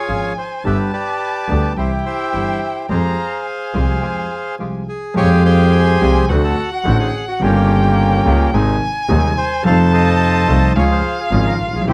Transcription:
Already playing: F4 G#4 C#5 G#5
0.08 G#1 G#2 F3 G#3 C#4 F4 G#4
0.38 C5
0.64 G1 G2 D3 G3 B3 D4 G4 B4 E5 A5
0.93 G4 B4 D5
1.48 D2 D3 G3 B3 D4 G4
1.76 C2 C3 E3 G3 C4 E4 G4 C5 G5
2.06 G4 C5 E5
2.33 G1 G2 E3 G3 C4 E4 G4
2.63 E5
2.89 F2 F3 G#3 C4 F4 G4 G#4 C5 F5 A#5
3.45 G#5
3.73 C2 C3 F3 G#3 C4 F4 G4
4.01 F2 F3 G#3 C4 F4 G4
4.59 C2 C3 F3 G#3 C4 F4 G4
4.89 G#4
5.14 F2 F3 G#3 C4 F4 G4 G#4 C#5 F5 G5
5.45 G4 G#4 C5
5.73 G#5
6.00 C2 C3 F3 G#3 C4 F4 G4
6.28 D2 D3 A3 C4 D4 F#4 B4 F#5
6.44 A4
6.72 F#4
6.84 A1 A2 D3 A3 C4 D4 F#4
7.00 G#4
7.28 F#4
7.40 G1 G2 C#3 G3 A#3 C#4 F4 G4 G5
7.44 F4
8.25 C#2 C#3 G3 A#3 F4 G4
8.53 G#1 G#2 C3 D#3 G#3 C4 D#4 G#4 G#5
9.09 D#1 D#2 C3 D#3 G#3 C4 D#4 G#4
9.38 C5
9.63 F2 C3 F3 A3 D#4 F4 A4 C5 F5 A5
9.67 D#4
9.94 A4 C5 D#5
10.48 C2 C3 F3 A3 D#4 F4 A4
10.76 C#2 C#3 F3 G#3 C#4 F4 G#4 C#5 F5
10.92 C5
11.20 G#4
11.31 G#1 G#2 C#3 F3 G#3 C#4 F4 G#4
11.47 A#4
11.59 A#1
11.67 A1
11.73 A#1 G#4
11.81 B1
11.85 C2 C3 E3 G3 C4 E4 G4 G5
11.89 E4 G4 C5

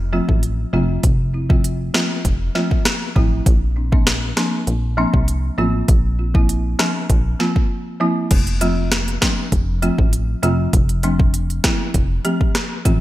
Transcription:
Already playing: F1
0.13 F3 A3 C4 F4
0.29 A1, kick
0.43 closed hi-hat
0.73 F1 F3 A3 C4 F4
1.03 F1, kick, closed hi-hat
1.34 C4 E4
1.50 F3 A3 C4 F4, kick
1.64 closed hi-hat
1.94 F3 A3 C4 F4, cross-stick, snare
2.25 F1, kick, closed hi-hat
2.55 F3 A3 C4 F4, snare
2.71 kick
2.85 cross-stick, snare, closed hi-hat
3.16 A1 F3 A3 C4 E4, kick
3.46 A#1, kick, closed hi-hat
3.76 C4 D4
3.92 F3 A#3 C4 D4, kick
4.07 cross-stick, snare, closed hi-hat
4.37 F3 A#3 C4 D4, cross-stick, snare
4.67 A#1, closed hi-hat
4.97 F3 A#3 C4 D4
5.14 C2, kick
5.28 closed hi-hat
5.58 A1 F3 A#3 C4 F4
5.88 A#1, kick, closed hi-hat
6.18 C4 F4
6.34 F3 A#3 C4 E4, kick
6.49 closed hi-hat
6.79 F3 A#3 C4 D4, cross-stick, snare
7.10 A#1, kick, closed hi-hat
7.40 F3 A#3 C4 F4, snare
7.56 kick
8.00 F3 A#3 C4 E4
8.31 F1, kick, closed hi-hat, crash
8.47 closed hi-hat
8.61 F3 A3 C4 F4, closed hi-hat
8.92 cross-stick, snare, closed hi-hat
9.08 closed hi-hat
9.22 F3 A3 C4 D4, kick, cross-stick, snare, closed hi-hat
9.52 F1, kick, closed hi-hat
9.82 F3 A3 C4 F4, closed hi-hat
9.98 A1, kick
10.13 closed hi-hat
10.43 F1 F3 A3 C4 F4, closed hi-hat
10.73 F1, kick, closed hi-hat
10.89 closed hi-hat
11.03 F3 A3 C4 D4, closed hi-hat
11.20 kick
11.34 closed hi-hat
11.50 closed hi-hat
11.64 F3 A3 C4 E4, kick, cross-stick, snare, closed hi-hat
11.94 F1, kick, closed hi-hat
12.24 F3 A3 C4 G4, closed hi-hat
12.41 kick
12.55 cross-stick, snare, closed hi-hat
12.85 A1 F3 A3 C4 F4, kick, closed hi-hat

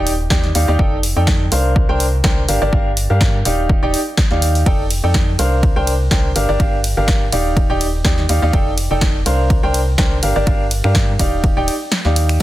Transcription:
Already playing: D#1 D#4 G4 D5 G5
0.07 open hi-hat
0.30 D#2 D#4 G4 D5 G5, kick, snare
0.43 snare
0.55 D#2 D#4 G4 D5 F5, open hi-hat
0.68 D#2 D#4 G4 D5 F5
0.79 F1 D#4 A4 D5 G5, kick
1.03 open hi-hat
1.16 F2 D#4 A4 D5 G5
1.27 kick, snare
1.52 C2 D4 A#4 C5 F5, open hi-hat
1.76 kick
1.89 C2 D4 A#4 C5 G5
2.00 open hi-hat
2.24 C2 D4 A#4 C5 G5, kick, snare
2.48 G1 D4 G4 A#4 F5, open hi-hat
2.62 G1 D4 G4 A#4 D5
2.73 G1 D4 G4 A#4 F5, kick
2.97 open hi-hat
3.10 G2 D4 G4 A#4 F5
3.21 kick, snare
3.45 D#1 D#4 G4 D5 F5, open hi-hat
3.70 kick
3.83 D#1 D#4 G4 D5 G5
3.94 open hi-hat
4.17 kick, snare
4.31 D#2 D#4 G4 D5 F5, snare
4.42 open hi-hat
4.55 open hi-hat
4.66 F1 D#4 A4 D5 G5, kick, ride
4.91 open hi-hat, ride
5.04 F2 D#4 A4 D5 G5
5.14 kick, snare, ride
5.39 C2 D4 A#4 C5 F5, open hi-hat, ride
5.63 kick, ride
5.76 C2 D4 A#4 C5 G5
5.87 open hi-hat, ride
6.11 C2 D4 A#4 C5 G5, kick, snare, ride
6.36 G1 D4 G4 A#4 F5, open hi-hat, ride
6.49 G1 D4 G4 A#4 D5
6.60 G1 D4 G4 A#4 F5, kick, ride
6.84 open hi-hat, ride
6.97 G1 D4 G4 A#4 F5
7.08 kick, snare, ride
7.32 D#1 D#4 G4 D5 F5, open hi-hat, ride
7.57 kick, ride
7.70 D#1 D#4 G4 D5 G5
7.81 open hi-hat, ride
8.05 D#2 D#4 G4 D5 G5, kick, snare, ride
8.18 snare
8.29 D#2 D#4 G4 D5 F5, open hi-hat, ride
8.42 D#2 D#4 G4 D5 F5
8.53 F1 D#4 A4 D5 G5, kick, ride
8.78 open hi-hat, ride
8.91 F1 D#4 A4 D5 G5
9.01 kick, snare, ride
9.26 C2 D4 A#4 C5 F5, open hi-hat, ride
9.50 kick, ride
9.63 C2 D4 A#4 C5 G5
9.74 open hi-hat, ride
9.98 C2 D4 A#4 C5 G5, kick, snare, ride
10.23 G1 D4 G4 A#4 F5, open hi-hat, ride
10.36 G1 D4 G4 A#4 D5
10.47 G1 D4 G4 A#4 F5, kick, ride
10.71 open hi-hat, ride
10.84 G2 D4 G4 A#4 F5, finger snap
10.95 kick, snare, ride
11.19 D#1 D#4 G4 D5 F5, kick, open hi-hat, ride
11.44 kick, ride
11.57 D#1 D#4 G4 D5 G5
11.68 open hi-hat, ride
11.92 snare, ride
12.05 D#2 D#4 G4 D5 F5, snare
12.16 open hi-hat, ride
12.29 finger snap, open hi-hat

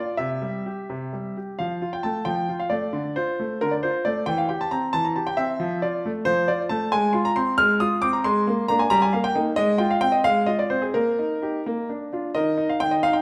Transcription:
Already playing: F4 D5
0.17 C3 E5
0.42 G3
0.66 G4
0.90 C3
1.13 G3
1.37 G4
1.59 F3 F5
1.82 F4
1.93 G5
2.03 A3 A5
2.25 F3 G5
2.49 F4
2.59 F5
2.70 A3 D5
2.93 D3
3.16 F4 C5
3.40 A3
3.61 D3 A#4
3.71 D5
3.83 F4 C5
4.05 A3 D5
4.26 E3 G5
4.38 F5
4.49 G4 G5
4.61 A5
4.71 C4 A#5
4.93 E3 A5
5.05 A#5
5.16 G4 A5
5.27 G5
5.37 C4 E5
5.60 F3
5.82 F4 D5
6.05 A3
6.25 F3 C5
6.48 F4 D5
6.69 A3 A5
6.92 G#3 G#5
7.13 F4 C6
7.25 A#5
7.36 C4 C6
7.58 G#3 F6
7.80 F4 D#6
8.02 C4 D6
8.13 A#5
8.24 G#3 C6
8.47 A#3
8.68 A#3 D4 A#5
8.79 G#5
8.90 G3 A#5
9.02 G#5
9.13 A#3 F5
9.24 G5
9.35 A#3 D#4
9.56 G#3 D#5
9.78 F4 G5
9.91 F5
10.01 C4 G5
10.12 D#5
10.24 G#3 F5
10.46 F4 D#5
10.59 D5
10.70 C4 C5
10.82 G#4
10.94 A#3 A#4
11.19 D#4
11.42 D#4 G4
11.66 A#3
11.89 D4
12.13 D4 F4
12.35 D#3 A#4 D#5
12.58 D#4
12.69 F5
12.80 D#3 G5
12.91 D#5
13.03 D#4 F5
13.13 G5

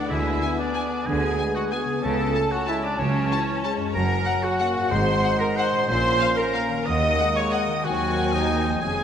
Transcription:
Already playing: D3 B3 D4 B4
0.01 E4
0.05 G#4
0.10 D2 D3 G#3 B3 E4 E5 G#5
0.42 B3 G#5
0.59 D4 D5
0.75 B3 G#5
1.06 D2 D3 G#4 G#5
1.38 G#3 G#5
1.55 F#4 F#5
1.71 B3 G#4 G#5
1.85 C#3
1.89 C#4
1.94 E4
1.98 A4
2.02 C#2 C#3 C#4 A4 A5
2.34 A3 A5
2.51 F#4 F#5
2.67 G#3 E4 E5 A5
2.83 D4 D5
2.98 C#2 C#3 F#3 C#4 C#5
3.30 E3 A5
3.63 G#3 A5
3.77 F#2
3.81 C#4
3.86 F#4
3.90 A#4
3.94 F#1 F#2 F#3 C#4 A#4 F#5 A#5
4.26 F#5
4.43 F#4 F#5
4.59 A#3 F#5
4.74 G#2
4.78 C4
4.83 F#4
4.87 G#3 D#5 C6
4.91 G#1 G#2 D#4 C5 C6
5.24 F#5
5.39 A#4 A#5
5.57 C5 F#5 C6
5.71 A#2
5.75 C#4
5.80 F4
5.84 F3 A#4
5.89 A#1 A#2 C#4 C5 F5 C6
6.21 F3 F5
6.38 A#4 A#5
6.53 A#3 F5
6.69 D#3
6.73 A#3
6.78 F#4
6.82 A#4 D#6
6.86 D#2 A#3 D#5 F#5 D#6
7.19 G#3 F#5
7.36 C#5 C#6
7.52 D#5 F#5 D#6
7.67 D#3
7.72 G#3
7.76 G#4
7.81 C5 F#5 G#5
7.85 D#2 F#3 C4 F#4 F#5 G#5
8.33 D#4 D#5
8.51 A#3
8.64 F3
8.69 G#3
8.73 G#4
8.78 C#5
8.82 F1 F2 G#3 C#4 G#4 G#5

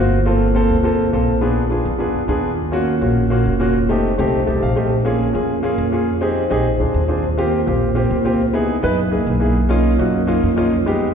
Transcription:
Already playing: G1 A#3 C4 F4 F#4
0.25 A#3 C4 F4 A4
0.55 A#3 C4 F4 A4
0.70 D2
0.83 A#3 C4 F4 A4
1.13 A#1 A#3 C4 F4 A4
1.41 B3 D4 F4 G#4
1.70 B3 D4 F4 G#4
1.85 F2
1.98 B3 D4 F4 G#4
2.14 F2
2.28 D#2 B3 D4 F4 G#4
2.72 A#3 C#4 F4 F#4
3.01 A#1 A#3 C#4 F4 F#4
3.30 A#3 C#4 F4 F#4
3.45 F1
3.60 A#3 C#4 F4 F#4
3.89 A3 C4 D#4 G4
4.18 C2 A3 C4 D#4 G4
4.46 C2 A3 C4 D#4 G4 A5
4.62 A#1 F5
4.76 A3 C4 D#4 G4 D#5
5.05 A#3 C#4 F4 G#4
5.33 F2 A#3 C#4 F4 G#4
5.63 A#3 C#4 F4 G#4
5.78 F2
5.92 A#3 C#4 F4 G#4
6.21 C4 D#4 G4 G#4
6.50 A#1 C4 D#4 G4 G#4
6.79 D2 C4 D4 F4 G#4
6.94 D#2
7.08 C4 D4 F4 G#4
7.38 A#3 C4 F4 G4
7.66 A#1 A#3 C4 F4 G4
7.95 A#3 C4 F4 G4
8.10 C#2
8.25 A#3 C4 F4 G4
8.53 B3 D#4 E4 G#4
8.82 F#2 B3 D#4 E4 B4
9.11 C#2 A#3 D#4 E4 G#4
9.27 B1
9.40 A#3 D#4 E4 G#4
9.69 A#3 C#4 D#4 F4
9.98 F#2 A#3 C#4 D#4 F#4
10.27 A#3 C#4 D#4 F4
10.43 F2
10.56 A#3 C#4 D#4 F4
10.86 G#3 B3 D#4 G4

